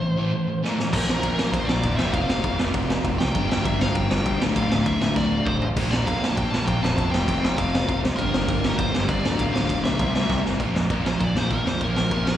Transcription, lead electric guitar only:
Already playing: C5
0.93 A#4
1.52 C5
1.66 D5
1.96 E5
2.12 F5
2.27 F5
3.19 G5
3.50 G5
3.65 E5
3.81 F5
3.96 G5
4.56 F5
4.86 E5
5.16 D5
5.45 C5
5.91 D5
5.96 D5
6.06 F5
6.28 A5
6.37 G5
6.51 A5
6.66 G5
6.83 A5
6.97 A5
7.11 G5
7.57 F5
8.16 A#4
8.78 C5
9.08 D5
9.38 F5
9.54 F5
9.84 E5
11.07 C5
11.23 D5
11.38 C5
11.53 A#4
11.69 C5
11.84 A#4

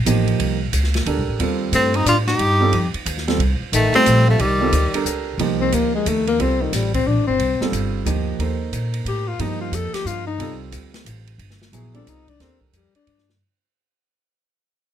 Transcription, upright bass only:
0.05 A1
0.39 C2
0.72 C#2
1.06 D2
1.17 C2
1.28 A1
1.39 D#2
1.72 G2
2.05 A2
2.39 G2
2.72 F2
2.94 muted upright bass stroke
3.06 D#2
3.38 C2
3.60 muted upright bass stroke
3.72 A1
3.93 muted upright bass stroke
4.06 A#1
4.39 C2
4.72 D2
4.93 muted upright bass stroke
5.05 C#2
5.38 C2
5.72 D2
6.05 D#2
6.39 C2
6.72 A1
7.06 A#1
7.17 A1
7.28 G1
7.39 C2
7.60 muted upright bass stroke
7.72 G1
8.05 D2
8.39 D#2
8.72 A#2
9.05 A2
9.39 G2
9.71 F2
9.93 muted upright bass stroke
10.05 G2
10.38 C2
10.72 D2
11.05 A1
11.38 G1
11.72 A#1
12.06 C2
12.40 D#2
12.73 F2
12.94 muted upright bass stroke
13.07 G2

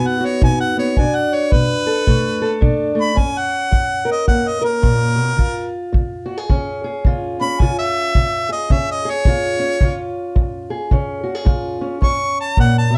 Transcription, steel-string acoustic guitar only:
Already playing: B2 B3 D#4 F#4
0.21 F#4
0.41 B2 D#4
0.77 B3
0.98 B2 D4
1.54 B2
1.87 A4
2.07 B2 A3
2.42 A4
2.61 B2 D4
2.95 A3
3.15 F#2 C#4
3.71 F#2
4.05 A#4
4.27 F#2 A#3
4.62 A#4
4.82 A#2
5.16 B2
5.37 C#3 F4
5.92 C#3
6.26 F#4
6.37 G#4
6.49 C#3 C#4
6.84 G#4
7.06 C#3 F4
7.41 C#4
7.62 C#3 F4
8.16 C#3
8.49 G#4
8.70 C#3 C#4
9.05 G#4
9.27 C#3 F4
9.59 C#4
9.81 C#3 F4
10.35 C#3
10.70 G#4
10.92 C#3 C#4
11.24 F#4
11.35 G#4
11.45 C#3 F4
11.81 C#4
12.01 F#2 C#4
12.58 A#2
12.90 B2

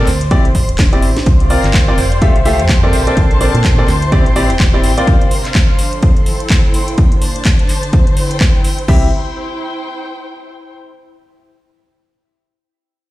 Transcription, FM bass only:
0.07 D2
0.45 A1
0.69 D1
1.02 A1
1.26 C2
1.64 G1
1.98 F1
2.36 C2
2.59 F2
2.93 A#1
3.17 A#1
3.55 A#2
3.88 D2
4.26 A1
4.50 D1
4.84 A1
8.88 C2

